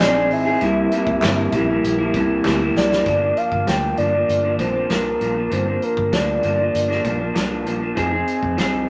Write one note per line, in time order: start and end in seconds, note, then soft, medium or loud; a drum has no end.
0.00 0.31 A#1 loud
0.00 0.15 F3 medium
0.00 0.15 C4 medium
0.00 0.15 D#4 loud
0.00 0.14 G#4 medium
0.00 0.31 D5 loud
0.00 snare loud
0.00 clap medium
0.00 closed hi-hat medium
0.15 0.47 C4 medium
0.15 0.46 D#4 medium
0.15 0.44 G#4 medium
0.31 0.55 G#1 medium
0.31 2.11 E5 loud
0.31 open hi-hat soft
0.45 0.62 C4 soft
0.45 0.62 D#4 soft
0.45 0.61 G#4 medium
0.61 0.86 C2 loud
0.61 0.90 C3 medium
0.61 0.92 G3 medium
0.61 0.92 A#3 medium
0.61 0.93 E4 medium
0.61 closed hi-hat medium
0.92 1.20 C3 medium
0.92 1.22 G3 medium
0.92 1.22 A#3 medium
0.92 1.23 E4 medium
0.92 closed hi-hat medium
1.07 1.19 C2 loud
1.07 kick medium
1.22 1.47 G1 medium
1.22 1.51 C3 medium
1.22 1.52 G3 medium
1.22 1.53 A#3 medium
1.22 1.54 E4 medium
1.22 snare loud
1.22 clap medium
1.22 closed hi-hat medium
1.52 1.77 A#1 loud
1.52 1.68 C3 medium
1.52 1.68 G3 medium
1.52 1.68 A#3 medium
1.52 1.66 E4 medium
1.52 kick medium
1.52 closed hi-hat medium
1.68 2.00 G3 soft
1.68 1.99 A#3 medium
1.68 1.97 E4 medium
1.84 2.08 A#1 medium
1.84 closed hi-hat medium
1.98 2.14 G3 soft
1.98 2.15 A#3 medium
1.98 2.14 E4 medium
2.14 2.39 C2 medium
2.14 2.43 C3 medium
2.14 2.44 G3 medium
2.14 2.45 A#3 medium
2.14 2.45 E4 medium
2.14 kick medium
2.14 closed hi-hat medium
2.44 2.69 D2 medium
2.44 2.60 C3 medium
2.44 2.60 G3 medium
2.44 2.60 A#3 medium
2.44 2.58 E4 medium
2.44 snare medium
2.44 clap medium
2.59 2.92 G3 medium
2.59 2.91 A#3 medium
2.59 2.89 E4 medium
2.75 3.00 C2 medium
2.75 3.39 D5 loud
2.75 snare medium
2.90 3.07 G3 medium
2.90 3.07 A#3 medium
2.90 3.06 E4 medium
2.90 snare medium
3.06 3.31 G1 medium
3.06 3.22 G2 medium
3.06 3.22 F3 medium
3.06 3.22 A#3 medium
3.06 3.20 D4 medium
3.06 kick loud
3.06 closed hi-hat medium
3.21 3.67 F3 soft
3.21 3.68 A#3 soft
3.21 3.67 D4 soft
3.37 3.70 F5 loud
3.37 closed hi-hat medium
3.52 3.64 G1 medium
3.52 kick medium
3.67 3.92 D2 medium
3.67 3.96 G2 medium
3.67 3.97 F3 medium
3.67 3.98 A#3 medium
3.67 3.99 D4 medium
3.67 3.98 G5 loud
3.67 snare loud
3.67 closed hi-hat medium
3.97 4.23 G1 medium
3.97 4.13 G2 medium
3.97 4.14 F3 medium
3.97 4.13 A#3 medium
3.97 4.11 D4 medium
3.97 4.55 D5 medium
3.97 closed hi-hat medium
4.12 4.45 F3 soft
4.12 4.44 A#3 soft
4.12 4.42 D4 soft
4.28 4.59 G1 medium
4.28 closed hi-hat medium
4.43 4.58 F3 soft
4.43 4.59 A#3 soft
4.43 4.59 D4 soft
4.58 4.84 A#1 medium
4.58 4.74 G2 medium
4.58 4.75 F3 soft
4.58 4.74 A#3 medium
4.58 4.73 D4 medium
4.58 4.92 C5 medium
4.58 kick medium
4.58 closed hi-hat medium
4.74 4.89 F3 soft
4.74 4.89 A#3 soft
4.74 4.90 D4 soft
4.89 5.15 C2 medium
4.89 5.18 G2 medium
4.89 5.20 F3 medium
4.89 5.20 A#3 medium
4.89 5.21 D4 medium
4.89 5.54 A#4 medium
4.89 snare loud
4.89 closed hi-hat medium
5.20 5.45 A#1 medium
5.20 5.36 G2 medium
5.20 5.36 F3 medium
5.20 5.35 A#3 medium
5.20 5.33 D4 medium
5.20 closed hi-hat medium
5.35 5.50 F3 soft
5.35 5.51 A#3 soft
5.35 5.51 D4 soft
5.50 5.76 G1 medium
5.50 5.66 G2 medium
5.50 5.67 F3 medium
5.50 5.67 A#3 medium
5.50 5.65 D4 medium
5.50 5.84 C5 loud
5.50 closed hi-hat medium
5.66 6.12 F3 soft
5.66 6.13 A#3 soft
5.66 6.13 D4 medium
5.82 6.15 A#4 medium
5.82 closed hi-hat medium
5.97 6.09 G1 medium
5.97 kick medium
6.12 6.37 D2 medium
6.12 6.41 G2 medium
6.12 6.42 F3 medium
6.12 6.43 A#3 medium
6.12 6.44 D4 medium
6.12 7.67 D5 medium
6.12 snare loud
6.12 closed hi-hat medium
6.42 6.68 G1 medium
6.42 6.58 G2 medium
6.42 6.59 F3 medium
6.42 6.59 A#3 medium
6.42 6.56 D4 medium
6.42 closed hi-hat medium
6.58 6.90 F3 soft
6.58 6.89 A#3 soft
6.58 6.87 D4 soft
6.74 6.99 G1 medium
6.74 closed hi-hat loud
6.88 7.04 F3 soft
6.88 7.05 A#3 soft
6.88 7.04 D4 medium
6.88 snare soft
7.04 7.29 A#1 medium
7.04 7.20 G2 medium
7.04 7.20 F3 medium
7.04 7.19 A#3 medium
7.04 7.17 D4 medium
7.04 kick medium
7.04 closed hi-hat medium
7.19 7.33 F3 soft
7.19 7.34 A#3 soft
7.19 7.34 D4 medium
7.34 7.66 C2 medium
7.34 7.64 G2 medium
7.34 7.65 F3 medium
7.34 7.66 A#3 medium
7.34 7.66 D4 loud
7.34 snare medium
7.34 closed hi-hat medium
7.65 7.91 A#1 medium
7.65 7.81 G2 medium
7.65 7.81 F3 medium
7.65 7.80 A#3 medium
7.65 7.79 D4 medium
7.65 closed hi-hat medium
7.80 7.94 F3 soft
7.80 7.96 A#3 soft
7.80 7.96 D4 medium
7.95 8.22 F1 medium
7.95 8.12 F3 medium
7.95 8.12 C4 medium
7.95 8.11 D#4 medium
7.95 8.09 G#4 medium
7.95 kick medium
7.95 closed hi-hat medium
8.11 8.57 C4 soft
8.11 8.57 D#4 soft
8.11 8.58 G#4 medium
8.28 closed hi-hat medium
8.43 8.55 F1 medium
8.43 kick medium
8.57 8.86 F3 medium
8.57 8.88 C4 medium
8.57 8.89 D#4 medium
8.57 8.89 G#4 medium
8.57 snare loud
8.57 closed hi-hat medium